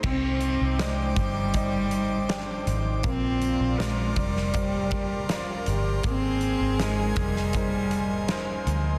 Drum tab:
CC |x---------------|----------------|----------------|
HH |--x-x-x-x-x-x-x-|x-x-x-x-x-x-x-x-|x-x-x-x-x-x-x-x-|
SD |----o-------o---|----o--o----o---|----o--o----o---|
BD |o-----o-o-------|o-----o-o-o-----|o-----o-o-------|